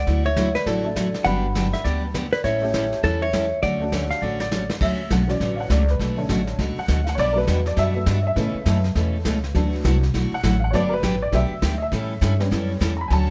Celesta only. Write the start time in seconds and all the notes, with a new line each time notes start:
Already playing: F#5
0.25 E5
0.55 D5
0.67 D5
1.27 B5
2.33 D5
2.44 E5
3.04 C#5
3.22 E5
3.62 F#5